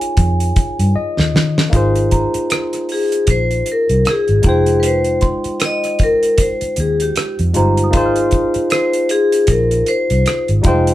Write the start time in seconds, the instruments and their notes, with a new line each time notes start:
Already playing: tine electric piano A#3 D#4 F4 G#4 C#5, vibraphone G#5
0.01 closed hi-hat
0.17 fingered electric bass F2, kick, closed hi-hat
0.40 closed hi-hat
0.56 kick, closed hi-hat
0.79 fingered electric bass G2, closed hi-hat
0.96 tine electric piano D#5, muted fingered electric bass stroke
1.19 fingered electric bass D#2, snare
1.34 fingered electric bass D#3, snare
1.58 snare
1.70 fingered electric bass G#1, tine electric piano A#3 D#4 F4, kick, closed hi-hat
1.75 tine electric piano G#4 C5
1.96 closed hi-hat
2.11 celesta A#5, kick, closed hi-hat
2.34 muted fingered electric bass stroke, closed hi-hat
2.50 cross-stick, closed hi-hat
2.73 cross-stick, closed hi-hat
2.89 vibraphone G#4, open hi-hat
3.12 closed hi-hat
3.27 fingered electric bass A#1, vibraphone C5, kick, closed hi-hat
3.51 closed hi-hat
3.66 closed hi-hat
3.72 vibraphone A#4
3.89 fingered electric bass C2, closed hi-hat
4.05 cross-stick, closed hi-hat
4.10 vibraphone G#4
4.28 fingered electric bass G#1, closed hi-hat
4.42 fingered electric bass F1, tine electric piano G#3 D#4 F4, kick, closed hi-hat
4.47 vibraphone G#4, tine electric piano C5 G5
4.66 closed hi-hat
4.80 vibraphone B4, closed hi-hat
4.86 vibraphone C5
5.04 closed hi-hat
5.21 celesta C6, kick, closed hi-hat
5.44 muted fingered electric bass stroke, closed hi-hat
5.60 cross-stick, closed hi-hat
5.65 vibraphone D#5
5.84 cross-stick, closed hi-hat
5.99 kick, closed hi-hat
6.03 vibraphone A#4
6.23 closed hi-hat
6.38 vibraphone C5, kick, closed hi-hat
6.61 muted fingered electric bass stroke, closed hi-hat
6.76 fingered electric bass D#2, vibraphone G#4, closed hi-hat
7.00 vibraphone G4, closed hi-hat
7.16 cross-stick, closed hi-hat
7.39 fingered electric bass F2, closed hi-hat
7.53 fingered electric bass G1, tine electric piano G#3 D#4 F4 G4 C5, celesta A#5, closed hi-hat
7.77 closed hi-hat
7.84 celesta D#6
7.91 fingered electric bass G#1, tine electric piano A#3 D#4 F4, kick, closed hi-hat
7.96 tine electric piano G#4 C5
8.05 celesta F6
8.16 closed hi-hat
8.31 kick, closed hi-hat
8.54 muted fingered electric bass stroke, closed hi-hat
8.70 vibraphone C5, cross-stick, closed hi-hat
8.93 closed hi-hat
9.09 vibraphone G#4, closed hi-hat
9.32 closed hi-hat
9.47 fingered electric bass A#1, vibraphone A#4, kick, closed hi-hat
9.71 closed hi-hat
9.86 vibraphone C5, closed hi-hat
10.10 fingered electric bass C2, vibraphone C5, closed hi-hat
10.26 cross-stick, closed hi-hat
10.48 fingered electric bass G#1, closed hi-hat
10.62 fingered electric bass F1, tine electric piano G3 D#4 F4, kick, closed hi-hat
10.66 tine electric piano G#3 C5 G5
10.87 closed hi-hat